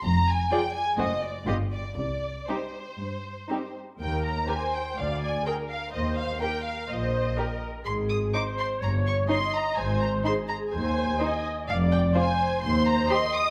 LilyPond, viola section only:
\new Staff \with { instrumentName = "Viola section" } { \time 4/4 \key c \minor \tempo 4 = 125 r4 <f f'>4 <a c'>4 <g b>4 | r4 <g c'>4 r4 <g c'>4 | \key ees \major bes'4 c''4 d''4 bes'4 | c''4 bes'4 c''4 bes'4 |
aes'4 c''4 des''4 ees''4 | c''4 aes'4 c''4 ees''4 | \key c \minor d''4 c''4 c''4 ees''4 | }